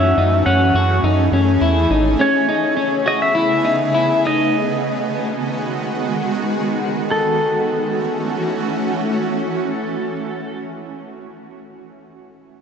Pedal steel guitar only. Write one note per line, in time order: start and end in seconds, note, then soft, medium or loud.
0.00 0.42 E5 medium
0.46 1.00 F#5 medium
2.21 3.10 C#5 loud
3.08 3.22 D#5 loud
3.22 3.36 E5 loud
3.38 4.22 E5 loud
4.27 6.41 D#5 medium
7.11 10.58 A4 medium